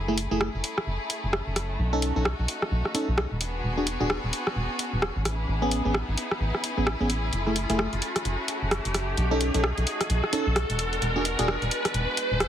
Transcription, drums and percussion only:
0.18 open hi-hat loud
0.41 cross-stick loud
0.64 open hi-hat loud
0.78 cross-stick medium
1.10 open hi-hat loud
1.33 cross-stick loud
1.56 cross-stick medium
1.56 open hi-hat loud
2.02 open hi-hat loud
2.25 cross-stick loud
2.48 open hi-hat loud
2.62 cross-stick medium
2.85 cross-stick medium
2.95 open hi-hat loud
3.18 cross-stick loud
3.41 open hi-hat loud
3.87 open hi-hat loud
4.10 cross-stick loud
4.33 open hi-hat loud
4.47 cross-stick medium
4.79 open hi-hat loud
5.02 cross-stick loud
5.25 cross-stick medium
5.25 open hi-hat loud
5.71 open hi-hat loud
5.94 cross-stick loud
6.18 open hi-hat loud
6.31 cross-stick medium
6.54 cross-stick soft
6.64 open hi-hat loud
6.87 cross-stick loud
7.10 open hi-hat loud
7.33 closed hi-hat medium
7.56 open hi-hat loud
7.70 closed hi-hat medium
7.79 cross-stick loud
7.93 closed hi-hat soft
8.02 open hi-hat loud
8.16 cross-stick medium
8.16 closed hi-hat medium
8.25 closed hi-hat medium
8.48 open hi-hat loud
8.71 cross-stick loud
8.71 closed hi-hat medium
8.85 closed hi-hat medium
8.94 cross-stick medium
8.94 open hi-hat loud
9.17 closed hi-hat medium
9.41 open hi-hat loud
9.54 closed hi-hat medium
9.64 cross-stick loud
9.78 closed hi-hat soft
9.87 open hi-hat loud
10.01 cross-stick medium
10.01 closed hi-hat medium
10.10 closed hi-hat medium
10.24 cross-stick medium
10.33 open hi-hat loud
10.56 cross-stick loud
10.56 closed hi-hat medium
10.70 closed hi-hat medium
10.79 open hi-hat loud
10.93 closed hi-hat soft
11.02 closed hi-hat medium
11.25 open hi-hat loud
11.39 closed hi-hat medium
11.48 cross-stick loud
11.62 closed hi-hat soft
11.71 open hi-hat loud
11.85 cross-stick medium
11.85 closed hi-hat medium
11.94 closed hi-hat medium
12.17 open hi-hat loud
12.40 cross-stick loud
12.40 closed hi-hat medium

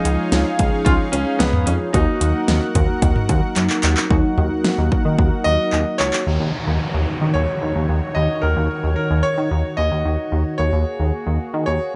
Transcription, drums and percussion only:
0.05 closed hi-hat medium
0.32 snare loud
0.32 closed hi-hat medium
0.59 kick loud
0.59 closed hi-hat medium
0.86 kick loud
0.86 closed hi-hat medium
1.13 closed hi-hat medium
1.40 snare loud
1.40 closed hi-hat medium
1.53 mid tom loud
1.53 mid tom medium
1.67 closed hi-hat medium
1.94 kick loud
1.94 closed hi-hat medium
2.21 closed hi-hat medium
2.48 snare loud
2.48 closed hi-hat medium
2.75 kick medium
2.75 closed hi-hat medium
2.75 mid tom medium
3.02 kick loud
3.02 closed hi-hat medium
3.16 mid tom medium
3.29 kick medium
3.29 closed hi-hat medium
3.56 clap medium
3.56 closed hi-hat medium
3.70 clap medium
3.83 clap loud
3.83 closed hi-hat medium
3.97 clap medium
4.11 kick loud
4.38 mid tom medium
4.64 snare loud
4.92 kick medium
5.19 kick loud
5.73 clap medium
6.00 clap medium
6.13 clap medium

